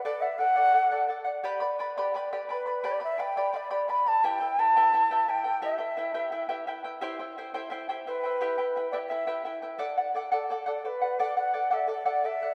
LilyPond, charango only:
\new Staff \with { instrumentName = "Charango" } { \time 2/4 \key d \mixolydian \tempo 4 = 86 <a' d'' fis''>16 <d'' fis''>16 <a' d'' fis''>16 <a' d'' fis''>16 <a' d'' fis''>16 <a' d'' fis''>16 <a' d'' fis''>16 <d'' fis''>16 | <g' b' d'' g'' b''>16 <b' d'' b''>16 <b' d'' g'' b''>16 <g' b' d'' g'' b''>16 <b' d'' g'' b''>16 <g' b' d'' g'' b''>16 <b' d'' g'' b''>16 <b' d'' b''>16 | <g' b' d'' g'' b''>16 <b' d'' b''>16 <b' d'' g'' b''>16 <g' b' d'' g'' b''>16 <b' d'' g'' b''>16 <g' b' d'' g'' b''>16 <b' d'' g'' b''>16 <b' d'' b''>16 | <e' g' b' e'' g''>16 <e' b' g''>16 <e' b' e'' g''>16 <e' g' b' e'' g''>16 <e' b' e'' g''>16 <e' g' b' e'' g''>16 <e' b' e'' g''>16 <e' b' g''>16 |
<e' g' b' e'' g''>16 <e' b' g''>16 <e' b' e'' g''>16 <e' g' b' e'' g''>16 <e' b' e'' g''>16 <e' g' b' e'' g''>16 <e' b' e'' g''>16 <e' b' g''>16 | <e' g' c'' e'' g''>16 <e' c'' g''>16 <e' c'' e'' g''>16 <e' g' c'' e'' g''>16 <e' c'' e'' g''>16 <e' g' c'' e'' g''>16 <e' c'' e'' g''>16 <e' c'' g''>16 | <e' g' b' e'' g''>16 <e' b' g''>16 <e' b' e'' g''>16 <e' g' b' e'' g''>16 <e' b' e'' g''>16 <e' g' b' e'' g''>16 <e' b' e'' g''>16 <e' b' g''>16 | <a' d'' fis''>16 <d'' fis''>16 <a' d'' fis''>16 <a' d'' fis''>16 <a' d'' fis''>16 <a' d'' fis''>16 <a' d'' fis''>16 <d'' fis''>16 |
<a' d'' fis''>16 <d'' fis''>16 <a' d'' fis''>16 <a' d'' fis''>16 <a' d'' fis''>16 <a' d'' fis''>16 <a' d'' fis''>16 <d'' fis''>16 | }